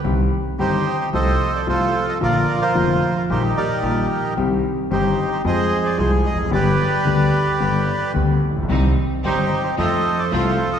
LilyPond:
<<
  \new Staff \with { instrumentName = "Bandoneon" } { \time 4/4 \key f \dorian \tempo 4 = 111 << { r4 c''8. c''16 ees''8. d''16 c''8. ees''16 | d''8. c''4 bes'16 c''8 d''4 r8 | r4 c''8. c''16 ees''8. d''16 c''8 ees''8 | d''2. r4 |
r4 c''8. c''16 ees''8. d''16 c''8. ees''16 | } \\ { r4 <ees' g'>4 <a' c''>4 <f' a'>4 | <f' bes'>8. f'4~ f'16 <ees' g'>8 <g' bes'>4. | r4 <ees' g'>4 <aes' c''>2 | <g' b'>2. r4 |
r4 <ees' g'>4 <a' c''>4 <f' a'>4 | } >> }
  \new Staff \with { instrumentName = "String section" } { \time 4/4 \key f \dorian r1 | r1 | r1 | r1 |
<g c' ees'>8 r8 <g c' ees'>8 r8 <a c' f'>8 r8 <a c' f'>8 r8 | }
  \new Staff \with { instrumentName = "Grand piano" } { \clef bass \time 4/4 \key f \dorian <c, c ees g c' g'>8 r8 <g,, g, ees g c' g'>8 r8 <c, c f a f'>8 r8 <c, c f a f'>8 r8 | <bes,, bes, d f bes f'>8 r8 <f,, f, d f bes f'>8 r8 <bes,, bes, ees g bes g'>8 r8 <bes,, bes, ees g bes g'>8 r8 | <c, c ees g c' g'>8 r8 <g,, g, ees g c' g'>8 r8 <f, f aes c' aes'>8 r8 <c, c f aes c' aes'>8 r32 e,32 f,32 fis,32 | <g,, g, d g b g'>8 r8 <d, d g b g'>8 r8 <g,, g, d g b g'>8 r8 <d, d g b g'>8 r32 a,,32 bes,,32 b,,32 |
<c, c ees g c' g'>8 r8 <g,, g, ees g c' g'>8 r8 <f, f a c' a'>8 r8 <c, c f a c' a'>8 r8 | }
  \new Staff \with { instrumentName = "Upright bass" } { \clef bass \time 4/4 \key f \dorian c,16. r8 r32 g,,16. r8 r32 c,16. r8 r32 c,16. r8 r32 | bes,,16. r8 r32 f,,16. r8 r32 bes,,16. r8 r32 bes,,16. r8 r32 | c,16. r8 r32 g,,16. r8 r32 f,16. r8 r32 c,16. r16 e,,32 f,,32 fis,,32 | g,,16. r8 r32 d,16. r8 r32 g,,16. r8 r32 d,16. r16 a,,32 bes,,32 b,,32 |
c,16. r8 r32 g,,16. r8 r32 f,16. r8 r32 c,16. r8 r32 | }
>>